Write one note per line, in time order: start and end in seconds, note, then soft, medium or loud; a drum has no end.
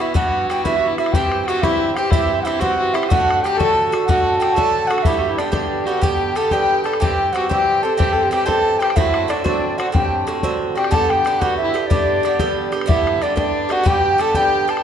0.00 0.14 E3 soft
0.00 0.15 B3 medium
0.00 0.18 E4 medium
0.00 0.15 F#4 medium
0.00 0.15 E5 medium
0.14 0.48 G2 medium
0.14 0.51 E3 medium
0.14 0.50 B3 medium
0.14 0.50 F#4 medium
0.14 0.66 F#4 medium
0.14 0.47 F#5 medium
0.14 bodhran medium
0.50 0.65 G2 medium
0.50 0.65 E3 medium
0.50 0.65 B3 medium
0.50 0.64 F#4 medium
0.50 0.64 G5 medium
0.50 bodhran soft
0.64 1.00 G2 medium
0.64 1.00 E3 medium
0.64 0.98 B3 medium
0.64 0.78 E4 medium
0.64 0.97 F#4 medium
0.64 0.97 E5 loud
0.64 bodhran medium
0.76 0.89 F#4 medium
0.88 0.98 E4 medium
0.98 1.13 E3 soft
0.98 1.15 B3 soft
0.98 1.16 E4 medium
0.98 1.14 F#4 soft
0.98 1.14 E5 medium
0.98 bodhran medium
1.06 bodhran soft
1.12 1.47 G2 medium
1.12 1.47 E3 medium
1.12 1.48 C4 medium
1.12 1.46 G4 medium
1.12 1.49 G4 medium
1.12 1.44 G5 loud
1.12 bodhran medium
1.23 bodhran soft
1.32 bodhran medium
1.44 1.65 F#4 medium
1.44 1.64 F#5 medium
1.44 1.49 G5 medium
1.48 1.64 G2 medium
1.48 1.64 E3 medium
1.48 1.62 C4 medium
1.48 1.62 G4 medium
1.48 bodhran medium
1.62 1.98 G2 soft
1.62 1.98 E3 medium
1.62 1.97 C4 medium
1.62 1.95 E4 medium
1.62 1.96 G4 medium
1.62 1.98 E5 medium
1.62 bodhran medium
1.96 2.12 E3 soft
1.96 2.12 C4 soft
1.96 2.12 G4 medium
1.96 2.13 G5 medium
1.96 bodhran medium
2.11 2.44 G2 medium
2.11 2.44 E3 medium
2.11 2.45 C4 medium
2.11 2.45 E4 medium
2.11 2.46 G4 medium
2.11 2.42 E5 loud
2.11 bodhran medium
2.42 2.60 G2 medium
2.42 2.61 E3 medium
2.42 2.60 C4 medium
2.42 2.61 E4 medium
2.42 2.62 E5 medium
2.42 2.46 F#5 medium
2.47 2.59 G4 medium
2.47 bodhran soft
2.60 2.95 G2 medium
2.60 2.95 E3 medium
2.60 2.95 C4 medium
2.60 2.78 F#4 medium
2.60 2.93 G4 medium
2.60 2.95 F#5 loud
2.60 bodhran medium
2.78 2.96 F#4 medium
2.94 3.11 E3 soft
2.94 3.11 C4 soft
2.94 3.10 E4 medium
2.94 3.10 G4 soft
2.94 3.11 E5 medium
2.94 bodhran medium
3.03 bodhran medium
3.09 3.43 A2 medium
3.09 3.44 D3 medium
3.09 3.44 A3 medium
3.09 3.41 F#4 medium
3.09 3.44 F#4 medium
3.09 3.45 F#5 loud
3.09 bodhran medium
3.21 bodhran soft
3.30 bodhran medium
3.41 3.59 A2 medium
3.41 3.59 D3 soft
3.41 3.59 G4 medium
3.41 3.59 G5 medium
3.41 bodhran medium
3.46 3.59 A3 medium
3.46 3.58 F#4 medium
3.57 3.93 A2 soft
3.57 3.94 D3 medium
3.57 3.92 A3 medium
3.57 3.91 F#4 medium
3.57 3.92 A4 loud
3.57 3.84 A5 medium
3.57 bodhran medium
3.92 4.08 D3 soft
3.92 4.08 A3 soft
3.92 4.08 F#4 medium
3.92 bodhran medium
4.06 4.39 A2 medium
4.06 4.41 D3 medium
4.06 4.40 A3 medium
4.06 4.57 F#4 medium
4.06 4.40 F#4 medium
4.06 4.38 F#5 medium
4.06 bodhran medium
4.39 4.56 A2 medium
4.39 4.56 D3 medium
4.39 4.56 A3 medium
4.39 4.55 F#4 medium
4.39 4.55 G5 loud
4.39 bodhran soft
4.54 4.93 D3 medium
4.54 4.90 A3 medium
4.54 4.89 F#4 medium
4.54 4.92 A4 medium
4.54 4.89 A5 loud
4.54 bodhran medium
4.58 4.91 A2 medium
4.87 5.06 F#4 soft
4.87 5.08 F#4 medium
4.87 5.04 F#5 medium
4.87 bodhran medium
4.92 5.04 D3 soft
4.92 5.06 A3 soft
4.98 bodhran medium
5.03 5.37 G2 medium
5.03 5.38 D3 medium
5.03 5.38 B3 medium
5.03 5.20 E4 medium
5.03 5.36 E5 medium
5.03 bodhran medium
5.07 5.39 G4 medium
5.14 bodhran soft
5.19 5.31 F#4 medium
5.30 5.40 E4 medium
5.37 5.52 G2 medium
5.37 5.52 D3 soft
5.37 5.51 B3 medium
5.37 5.52 D4 medium
5.37 5.50 G4 medium
5.37 5.52 D5 medium
5.37 bodhran medium
5.52 5.88 G2 medium
5.52 5.88 D3 medium
5.52 5.86 B3 medium
5.52 5.87 D4 medium
5.52 5.86 G4 medium
5.52 5.88 D5 medium
5.52 bodhran medium
5.86 6.01 D3 soft
5.86 6.02 B3 medium
5.86 6.03 F#4 medium
5.86 6.02 G4 medium
5.86 6.04 F#5 medium
6.01 6.34 G2 medium
6.01 6.35 D3 medium
6.01 6.35 B3 medium
6.01 6.37 G4 medium
6.01 6.36 G4 medium
6.01 6.39 G5 medium
6.01 bodhran medium
6.35 6.52 G2 soft
6.35 6.52 D3 medium
6.35 6.52 B3 medium
6.35 6.50 G4 medium
6.35 6.54 A4 medium
6.35 6.54 A5 medium
6.35 bodhran soft
6.51 6.86 G2 medium
6.51 6.85 D3 medium
6.51 6.84 B3 medium
6.51 6.84 G4 medium
6.51 6.87 G4 medium
6.51 6.84 G5 loud
6.51 bodhran medium
6.84 7.01 D3 soft
6.84 7.01 B3 soft
6.84 7.00 G4 soft
6.84 7.01 A4 medium
6.84 7.02 A5 medium
6.84 bodhran soft
6.93 bodhran medium
7.00 7.31 G2 medium
7.00 7.33 E3 medium
7.00 7.34 C4 medium
7.00 7.33 G4 medium
7.00 7.34 G4 medium
7.00 7.34 G5 medium
7.00 bodhran medium
7.11 bodhran soft
7.33 7.49 G2 medium
7.33 7.50 E3 soft
7.33 7.48 C4 medium
7.33 7.49 F#4 medium
7.33 7.48 G4 medium
7.33 7.51 F#5 medium
7.33 bodhran soft
7.49 7.84 G2 medium
7.49 7.84 E3 medium
7.49 7.84 C4 medium
7.49 7.82 G4 medium
7.49 7.85 G4 medium
7.49 7.84 G5 medium
7.49 bodhran medium
7.82 7.97 E3 soft
7.82 7.97 C4 soft
7.82 7.97 G4 medium
7.82 7.98 A4 medium
7.82 7.96 A5 medium
7.96 8.30 G2 medium
7.96 8.31 E3 medium
7.96 8.32 C4 medium
7.96 8.31 G4 medium
7.96 8.14 G4 medium
7.96 8.29 G5 loud
7.96 bodhran medium
8.13 8.24 A4 medium
8.23 8.33 G4 medium
8.31 8.46 G2 medium
8.31 8.45 E3 medium
8.31 8.45 C4 medium
8.31 8.45 G4 medium
8.31 8.50 G4 medium
8.31 8.48 G5 medium
8.31 bodhran soft
8.46 8.81 G2 medium
8.46 8.80 E3 medium
8.46 8.80 C4 medium
8.46 8.79 G4 medium
8.46 8.81 A4 medium
8.46 8.81 A5 loud
8.46 bodhran medium
8.79 8.97 E3 soft
8.79 8.95 C4 soft
8.79 8.96 G4 soft
8.79 8.96 G4 medium
8.79 8.98 G5 medium
8.79 bodhran medium
8.90 bodhran medium
8.96 9.27 A2 medium
8.96 9.28 D3 medium
8.96 9.29 C4 medium
8.96 9.34 E4 medium
8.96 9.28 F#4 medium
8.96 9.31 E5 loud
8.96 bodhran medium
9.06 bodhran soft
9.14 bodhran medium
9.28 9.45 A2 medium
9.28 9.44 D3 medium
9.28 9.44 C4 medium
9.28 9.43 F#4 medium
9.28 9.45 D5 medium
9.28 bodhran medium
9.32 9.45 D4 medium
9.44 9.80 A2 medium
9.44 9.80 D3 medium
9.44 9.78 C4 medium
9.44 9.77 D4 medium
9.44 9.77 F#4 medium
9.44 9.79 D5 medium
9.44 bodhran medium
9.78 9.92 D3 soft
9.78 9.92 C4 soft
9.78 9.94 F#4 medium
9.78 9.86 F#4 medium
9.78 9.92 F#5 medium
9.78 bodhran medium
9.92 10.26 A2 medium
9.92 10.27 D3 medium
9.92 10.27 C4 medium
9.92 10.26 G4 medium
9.92 10.25 G5 medium
9.92 bodhran medium
10.27 10.43 A2 medium
10.27 10.43 D3 medium
10.27 10.43 C4 soft
10.27 10.42 F#4 medium
10.27 bodhran soft
10.43 10.78 A2 medium
10.43 10.77 D3 medium
10.43 10.76 C4 medium
10.43 10.74 F#4 medium
10.43 bodhran medium
10.75 10.90 D3 soft
10.75 10.91 C4 soft
10.75 10.92 F#4 soft
10.75 10.95 G4 medium
10.75 10.93 G5 medium
10.75 bodhran soft
10.84 bodhran medium
10.91 11.24 G2 medium
10.91 11.26 D3 medium
10.91 11.27 B3 medium
10.91 11.26 G4 medium
10.91 11.14 A4 medium
10.91 11.11 A5 loud
10.91 bodhran medium
11.01 bodhran soft
11.10 11.43 G4 medium
11.10 11.41 G5 loud
11.10 bodhran soft
11.25 11.41 G2 medium
11.25 11.40 D3 medium
11.25 11.40 B3 medium
11.25 11.40 G4 medium
11.25 bodhran medium
11.39 11.76 G2 soft
11.39 11.75 D3 medium
11.39 11.74 B3 medium
11.39 11.60 F#4 medium
11.39 11.73 G4 medium
11.39 11.56 F#5 medium
11.39 bodhran medium
11.57 11.83 E5 loud
11.62 11.83 E4 medium
11.74 11.89 D3 soft
11.74 11.90 B3 medium
11.74 11.90 G4 soft
11.74 bodhran soft
11.83 12.71 D5 medium
11.83 11.88 E5 medium
11.90 12.22 G2 medium
11.90 12.24 D3 medium
11.90 12.25 B3 medium
11.90 12.69 D4 medium
11.90 12.25 G4 medium
11.90 bodhran medium
12.23 12.39 G2 medium
12.23 12.40 D3 medium
12.23 12.39 B3 medium
12.23 12.38 G4 medium
12.23 bodhran soft
12.39 12.73 G2 medium
12.39 12.74 D3 medium
12.39 12.73 B3 medium
12.39 12.71 G4 medium
12.39 bodhran medium
12.72 12.86 D3 soft
12.72 12.86 B3 medium
12.72 12.87 G4 medium
12.72 bodhran medium
12.81 bodhran medium
12.86 13.20 G2 medium
12.86 13.21 D3 medium
12.86 13.23 B3 medium
12.86 13.25 E4 medium
12.86 13.23 G4 medium
12.86 13.24 E5 medium
12.86 bodhran medium
12.98 bodhran soft
13.07 bodhran medium
13.22 13.36 G2 medium
13.22 13.36 D3 medium
13.22 13.35 B3 medium
13.22 13.38 D4 medium
13.22 13.34 G4 medium
13.22 13.37 D5 medium
13.22 bodhran soft
13.36 13.70 G2 medium
13.36 13.70 D3 medium
13.36 13.70 B3 soft
13.36 13.74 D4 medium
13.36 13.68 G4 medium
13.36 13.73 D5 medium
13.36 bodhran medium
13.69 13.84 D3 soft
13.69 13.84 B3 soft
13.69 13.89 F#4 medium
13.69 13.85 G4 medium
13.69 13.88 F#5 loud
13.69 bodhran medium
13.84 14.17 G2 medium
13.84 14.18 D3 medium
13.84 14.20 B3 medium
13.84 14.20 G4 medium
13.84 14.21 G4 medium
13.84 14.23 G5 loud
13.84 bodhran medium
14.18 14.34 G2 medium
14.18 14.35 D3 medium
14.18 14.34 B3 medium
14.18 14.34 G4 medium
14.18 14.35 A4 medium
14.18 14.39 A5 loud
14.18 bodhran soft
14.34 14.69 G2 medium
14.34 14.68 D3 medium
14.34 14.68 B3 medium
14.34 14.67 G4 medium
14.34 14.80 G4 medium
14.34 14.72 G5 loud
14.34 bodhran medium
14.68 14.83 D3 soft
14.68 14.83 B3 soft
14.68 14.83 G4 medium
14.68 14.83 A5 medium
14.68 bodhran medium
14.77 bodhran medium